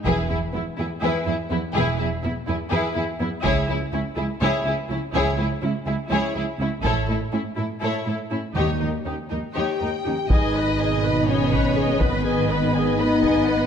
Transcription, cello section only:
0.06 E2
0.30 E2
0.54 E2
0.78 E2
1.02 E2
1.26 E2
1.51 E2
1.76 E2
2.00 E2
2.24 E2
2.48 E2
2.72 E2
2.96 E2
3.20 E2
3.45 C#2
3.69 C#2
3.93 C#2
4.18 C#2
4.41 C#2
4.65 C#2
4.90 C#2
5.14 C#2
5.38 C#2
5.62 C#2
5.86 C#2
6.10 C#2
6.35 C#2
6.59 C#2
6.83 A2
7.08 A2
7.33 A2
7.58 A2
7.82 A2
8.06 A2
8.31 A2
8.57 D#2
8.82 D#2
9.07 D#2
9.32 D#2
9.57 D#2
9.81 D#2
10.06 D#2
10.80 B2
12.01 D#3
12.98 B3

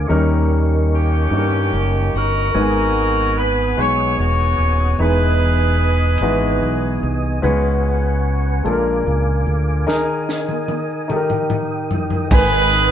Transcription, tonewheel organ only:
0.08 A#4 D#5 C#6
2.54 B3 F#5 G#5 D#6
4.98 D#5 D#6
7.44 B4 F#5 G#5 C#6
8.66 A#4 F5 D6
9.87 D#5 G#5 D#6
11.10 G5
12.31 B4 G#5

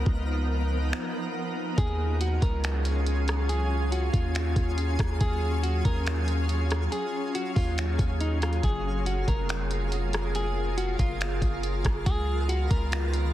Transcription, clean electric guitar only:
1.78 G#4
2.21 F#4
2.42 A#4
3.49 G#4
3.92 F#4
4.13 F4
5.21 G#4
5.63 F#4
5.85 A#4
6.92 G#4
7.35 F#4
7.56 F4
8.21 D#4
8.42 F4
8.64 G#4
9.06 F#4
9.28 A#4
10.36 G#4
10.77 F#4
11.00 F4
12.06 G#4
12.49 F#4
12.71 A#4

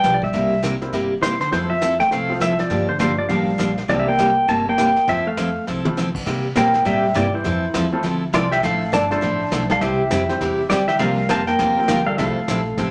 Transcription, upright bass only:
0.04 B1
0.34 C2
0.93 G1
1.52 F2
2.11 C2
2.70 G2
3.00 G1
3.29 A1
3.59 A#1
3.89 C2
4.48 G1
5.08 F2
5.68 C2
6.26 C3
6.56 A#2
6.85 A2
7.15 G2
7.45 F2
7.74 E2
8.04 D2
8.34 C2
8.63 A1
8.93 G1
9.22 A1
9.52 B1
9.81 C2
10.11 F2
10.41 E2
10.70 D2
11.00 C2
11.29 F2
11.59 E2
11.89 D2
12.19 C2
12.37 muted upright bass stroke
12.48 A#1
12.78 A1

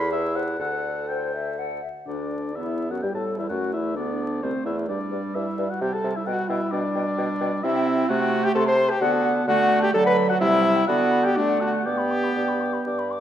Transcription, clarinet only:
0.11 E4
0.59 A4
1.08 A4
1.58 A4
2.55 B3
3.03 G3
3.50 A3
3.96 B3
4.43 A3
4.89 G3
5.82 G3
7.64 C4
8.09 A3
9.01 B3
9.48 A3
9.94 F#3
10.41 G3
10.88 B3
11.37 A3
11.86 B3

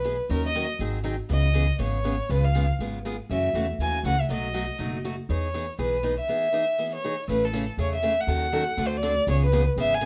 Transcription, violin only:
Already playing: B4
0.32 A#4
0.46 D#5
1.31 D#5
1.81 C#5
2.30 B4
2.45 F5
3.31 E5
3.81 G#5
4.07 F#5
4.20 E5
4.31 D#5
5.30 C#5
5.80 B4
6.19 E5
6.95 C#5
7.29 B4
7.44 A4
7.80 C#5
7.95 E5
8.20 F#5
8.86 C5
8.96 D5
9.30 C#5
9.45 B4
9.80 E5
9.94 G#5

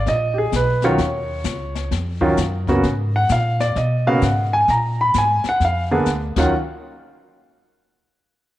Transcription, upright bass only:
0.06 A#1
0.52 B1
0.98 D#2
1.44 C#2
1.91 F2
2.37 F#2
2.83 G#2
3.29 A#2
3.75 B2
4.22 G#2
4.68 A#2
5.14 G#2
5.44 muted upright bass stroke
5.60 F2
6.06 D2
6.36 D#2

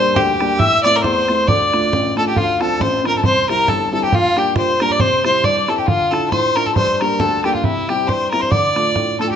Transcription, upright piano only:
Already playing: G2 G3 A#3 D4
0.16 D2
0.41 G3 A#3 D4
0.60 A2
0.85 A3 C4 E4
1.05 E2
1.29 A3 C4 E4
1.49 D2
1.73 A3 D4 F4
1.93 A1
2.17 A3 D4 F4
2.36 D2
2.60 F3 C4 D4
2.79 A1
3.03 F3 C4 D4
3.24 C2
3.49 G3 C4 E4
3.68 G1
3.92 G3 C4 E4
4.12 A#2
4.36 G3 A#3 D4
4.56 A#2
4.81 G3 A#3 D4
5.00 C3
5.24 G3 C4 E4
5.43 G2
5.68 G3 C4 E4
5.87 D3
6.12 D4 E4 F4
6.32 A2
6.56 D4 E4 F4
6.76 G2
7.01 G3 A#3 D4
7.20 D2
7.44 G3 A#3 D4
7.63 C3
7.89 G3 C4 E4
8.08 G2
8.32 G3 C4 E4
8.51 D3
8.76 A3 D4 F4
8.95 A2
9.19 A3 D4 F4

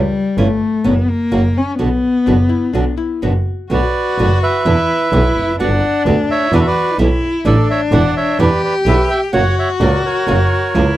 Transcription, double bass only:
Already playing: C#2
0.38 G1
0.85 F#1
1.32 F#1
1.80 B1
2.27 F#1
2.74 B1
3.23 F#1
3.70 B1
4.18 F#1
4.66 E2
5.12 B1
5.35 F1
5.59 G1
6.05 D2
6.52 E2
6.99 B1
7.45 A1
7.92 E1
8.39 E2
8.86 B1
9.33 F#1
9.80 C#2
10.28 F#1
10.75 C#2

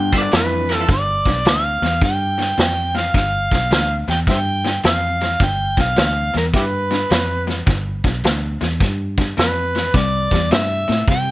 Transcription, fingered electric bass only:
Already playing: G2
0.33 F2
0.89 G1
1.26 B1
1.45 D2
1.82 E2
2.02 G2
2.58 F2
3.14 G1
3.52 B1
3.71 D2
4.08 E2
4.27 G2
4.84 F2
5.40 G1
5.77 B1
5.98 D2
6.35 E2
6.53 G2
7.11 F2
7.67 G1
8.04 B1
8.24 D2
8.62 E2
8.81 G2
9.38 F2
9.94 C2
10.31 E2
10.51 G2
10.89 A2
11.08 C3

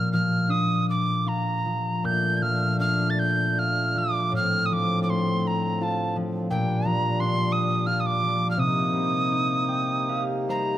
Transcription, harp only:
Already playing: A#2 F4
0.13 F3
0.49 D4
1.26 F4
1.66 F3
2.04 A#2
2.42 F3
2.80 D4
3.58 F4
3.95 F3
4.32 A2
4.72 F3
5.09 A3
5.81 F4
6.16 F3
6.50 A#2
6.85 F3
7.20 D4
7.87 F4
8.23 F3
8.57 C3
8.93 G3
9.31 D#4
9.69 G5
10.09 G4 F5
10.48 G3 C5

